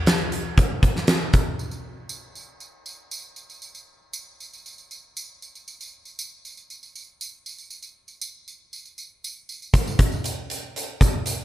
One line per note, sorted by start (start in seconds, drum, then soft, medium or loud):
0.07 snare medium
0.07 closed hi-hat medium
0.32 closed hi-hat medium
0.57 kick medium
0.57 closed hi-hat medium
0.83 kick medium
0.83 closed hi-hat medium
0.96 snare soft
1.07 snare loud
1.07 closed hi-hat medium
1.33 kick medium
1.33 closed hi-hat medium
1.59 tambourine soft
1.71 tambourine soft
2.09 tambourine medium
2.35 tambourine soft
2.60 tambourine soft
2.86 tambourine soft
3.11 tambourine medium
3.36 tambourine soft
3.50 tambourine soft
3.62 tambourine soft
3.75 tambourine soft
4.13 tambourine medium
4.40 tambourine soft
4.53 tambourine soft
4.66 tambourine soft
4.78 tambourine soft
4.91 tambourine soft
5.17 tambourine medium
5.42 tambourine soft
5.55 tambourine soft
5.68 tambourine soft
5.81 tambourine soft
6.05 tambourine soft
6.19 tambourine medium
6.45 tambourine soft
6.57 tambourine soft
6.70 tambourine soft
6.83 tambourine soft
6.95 tambourine soft
7.21 tambourine medium
7.46 tambourine soft
7.58 tambourine soft
7.70 tambourine soft
7.82 tambourine soft
8.08 tambourine soft
8.21 tambourine medium
8.48 tambourine soft
8.73 tambourine soft
8.85 tambourine soft
8.98 tambourine soft
9.24 tambourine medium
9.49 tambourine soft
9.62 tambourine soft
9.74 kick medium
9.74 closed hi-hat medium
9.74 tambourine soft
9.87 tambourine soft
9.99 kick medium
9.99 closed hi-hat medium
10.12 tambourine soft
10.24 closed hi-hat medium
10.24 tambourine medium
10.50 closed hi-hat medium
10.50 tambourine soft
10.76 closed hi-hat medium
10.76 tambourine soft
11.01 kick medium
11.01 closed hi-hat medium
11.01 tambourine soft
11.26 closed hi-hat medium
11.26 tambourine medium